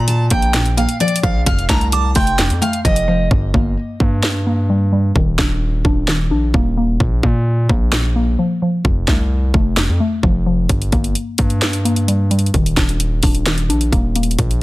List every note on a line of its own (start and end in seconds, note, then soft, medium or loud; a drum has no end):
0.00 0.29 A#2 loud
0.00 0.53 A#2 loud
0.00 0.30 A#3 medium
0.00 0.96 A#5 medium
0.08 0.25 A5 medium
0.08 closed hi-hat medium
0.30 0.86 A#1 loud
0.30 0.76 A#3 medium
0.30 0.74 G5 medium
0.30 kick loud
0.30 closed hi-hat medium
0.42 closed hi-hat medium
0.54 1.46 A#2 medium
0.54 snare loud
0.54 clap loud
0.54 closed hi-hat medium
0.66 closed hi-hat medium
0.77 1.47 A#3 medium
0.77 0.95 F5 medium
0.77 closed hi-hat medium
0.89 closed hi-hat medium
1.00 1.22 F3 medium
1.00 1.18 D5 medium
1.00 closed hi-hat soft
1.08 closed hi-hat medium
1.16 closed hi-hat medium
1.23 1.46 A#1 loud
1.23 1.47 F3 medium
1.23 1.41 F5 medium
1.23 kick loud
1.46 1.69 F1 loud
1.46 2.37 F2 loud
1.46 1.64 F5 loud
1.46 kick loud
1.46 closed hi-hat medium
1.59 closed hi-hat medium
1.69 2.14 C2 loud
1.69 2.14 A3 medium
1.69 1.91 A5 medium
1.69 1.87 A#5 medium
1.69 kick loud
1.69 snare loud
1.69 clap medium
1.69 closed hi-hat medium
1.81 closed hi-hat medium
1.92 2.10 A5 medium
1.92 2.15 D6 medium
1.92 closed hi-hat medium
2.15 2.52 F1 loud
2.15 2.60 A3 medium
2.15 2.59 G5 medium
2.15 2.38 C6 medium
2.15 kick loud
2.15 open hi-hat medium
2.27 closed hi-hat medium
2.38 3.31 F2 medium
2.38 snare loud
2.38 clap loud
2.38 closed hi-hat medium
2.50 2.61 F2 loud
2.50 closed hi-hat medium
2.62 3.31 A3 medium
2.62 2.79 F5 medium
2.62 closed hi-hat medium
2.73 closed hi-hat medium
2.85 3.29 F1 loud
2.85 3.07 F3 medium
2.85 3.28 D#5 medium
2.85 kick loud
2.85 closed hi-hat medium
2.96 closed hi-hat medium
3.08 3.31 F3 medium
3.31 3.53 G1 loud
3.31 4.22 G2 loud
3.31 kick loud
3.54 3.76 G1 loud
3.54 3.99 A#3 medium
3.54 kick loud
4.00 5.12 G2 loud
4.00 4.45 A#3 medium
4.00 kick loud
4.23 5.16 G2 medium
4.23 snare loud
4.23 clap loud
4.47 5.16 A#3 medium
4.69 4.91 G3 medium
4.92 5.16 G3 medium
5.16 5.38 D#1 loud
5.16 6.06 D#3 loud
5.16 kick loud
5.38 5.83 D#1 loud
5.38 5.84 D4 medium
5.38 kick loud
5.38 snare loud
5.38 clap medium
5.85 6.32 D#1 loud
5.85 6.30 D4 medium
5.85 kick loud
6.08 7.00 D#3 medium
6.08 snare loud
6.08 clap loud
6.31 6.53 A#1 loud
6.31 7.00 D4 medium
6.54 6.98 D#1 loud
6.54 6.76 A#3 medium
6.54 kick medium
6.77 7.00 A#3 medium
7.00 7.22 A#1 loud
7.00 7.91 A#2 loud
7.00 kick loud
7.23 7.68 A#2 loud
7.23 7.68 A#3 medium
7.23 kick loud
7.69 8.36 A#1 loud
7.69 8.15 A#3 medium
7.69 kick loud
7.92 8.85 A#2 medium
7.92 snare loud
7.92 clap loud
8.16 8.85 A#3 medium
8.39 8.61 F3 medium
8.62 8.85 F3 medium
8.85 9.07 F1 loud
8.85 9.76 F2 loud
8.85 kick loud
9.08 9.52 C2 loud
9.08 9.53 A3 loud
9.08 kick loud
9.08 snare loud
9.08 clap medium
9.54 9.90 F1 loud
9.54 9.99 A3 medium
9.54 kick loud
9.77 10.69 F2 medium
9.77 snare loud
9.77 clap medium
9.89 10.00 F2 loud
10.00 10.69 A3 medium
10.23 10.68 F1 loud
10.23 10.45 F3 medium
10.23 kick medium
10.46 10.69 F3 medium
10.69 10.92 G1 loud
10.69 11.61 G2 loud
10.69 kick loud
10.69 closed hi-hat medium
10.82 closed hi-hat medium
10.92 11.15 G1 loud
10.92 11.38 A#3 medium
10.92 kick loud
10.92 closed hi-hat medium
11.04 closed hi-hat medium
11.15 closed hi-hat medium
11.38 12.50 G2 loud
11.38 11.84 A#3 medium
11.38 kick loud
11.38 closed hi-hat medium
11.50 closed hi-hat medium
11.62 12.54 G2 medium
11.62 snare loud
11.62 clap medium
11.62 closed hi-hat medium
11.73 closed hi-hat medium
11.85 12.54 A#3 medium
11.85 closed hi-hat medium
11.96 closed hi-hat medium
12.08 12.30 G3 medium
12.08 closed hi-hat medium
12.31 12.54 G3 medium
12.31 closed hi-hat medium
12.39 closed hi-hat soft
12.46 closed hi-hat soft
12.54 12.76 D#1 loud
12.54 13.45 D#3 loud
12.54 kick loud
12.54 closed hi-hat medium
12.66 closed hi-hat medium
12.77 13.21 D#1 loud
12.77 13.22 D4 medium
12.77 kick loud
12.77 snare loud
12.77 clap medium
12.77 closed hi-hat medium
12.89 closed hi-hat medium
13.00 closed hi-hat medium
13.23 13.71 D#1 loud
13.23 13.68 D4 medium
13.23 kick loud
13.23 open hi-hat medium
13.35 closed hi-hat medium
13.46 14.39 D#3 medium
13.46 snare loud
13.46 clap medium
13.46 closed hi-hat medium
13.58 closed hi-hat medium
13.69 13.91 A#1 loud
13.69 14.39 D4 medium
13.69 closed hi-hat medium
13.81 closed hi-hat medium
13.93 14.37 D#1 loud
13.93 14.15 A#3 medium
13.93 kick medium
13.93 closed hi-hat medium
14.15 14.39 A#3 medium
14.15 closed hi-hat medium
14.23 closed hi-hat soft
14.31 closed hi-hat soft
14.39 14.61 A#1 loud
14.39 14.63 A#2 loud
14.39 kick loud
14.39 closed hi-hat medium
14.51 closed hi-hat medium